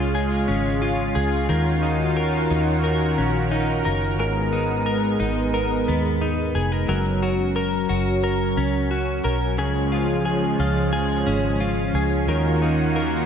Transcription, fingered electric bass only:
0.00 0.45 C#2 medium
0.49 1.13 G#1 medium
1.16 1.48 C#2 medium
1.50 2.47 D#2 medium
2.51 3.15 D#2 medium
3.19 3.82 A#1 medium
3.86 4.19 F#1 medium
4.19 5.16 G#1 medium
5.20 5.84 G#1 medium
5.89 6.57 D#2 medium
6.55 6.87 F1 medium
6.89 7.86 F#1 medium
7.90 8.54 F#1 medium
8.57 9.21 C#2 medium
9.25 9.59 B1 medium
9.59 10.56 C#2 medium
10.60 11.24 C#2 medium
11.27 11.91 G#1 medium
11.94 12.26 C#2 medium
12.27 13.25 D#2 medium

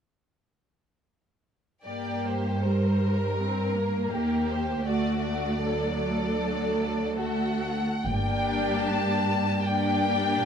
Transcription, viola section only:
1.86 2.62 A#3 soft
2.65 3.40 G3 soft
3.40 3.76 C4 soft
3.75 4.88 A#3 soft
4.86 5.60 A3 soft
5.62 6.39 F#3 soft
6.40 7.18 F#3 soft
7.21 7.85 A3 soft
8.06 9.62 A#3 soft
8.06 9.62 D4 soft
9.66 10.45 A#3 soft
9.66 10.45 D4 soft

